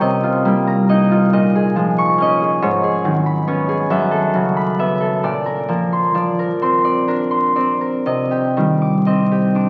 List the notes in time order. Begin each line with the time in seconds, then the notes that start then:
Already playing: F3 G3 A#3 F4 G4 A#5
0.01 C3 D#5
0.23 F4
0.45 G3 A#3
0.67 A#5
0.89 A#3 D#4 D#5
1.11 F4
1.33 A#2 D#5
1.55 G#4
1.76 F3 G#3
1.98 C#6
2.18 A#3 C#4
2.22 D#5
2.42 G#4
2.62 G#2 C#5
2.83 G#4
3.04 D#3 F#3
3.26 B5
3.47 B3 C#4 C#5
3.69 G#4
3.90 F#2 E5
4.11 A4
4.34 C#3 F#3
4.57 B5
4.79 B3 E5
5.00 A4
5.23 A#2 D5
5.46 A#4
5.68 F3 A#3
5.93 C6
6.14 F3 D5
6.39 A#4
6.62 C4 C6
6.85 D5
7.08 D4 A#4
7.31 C6
7.56 C4 D5
7.81 A#4
8.06 C3 D#5
8.31 G4
8.57 D#3 G3
8.82 D6
9.06 C4 D#5
9.31 G4
9.55 D4 D6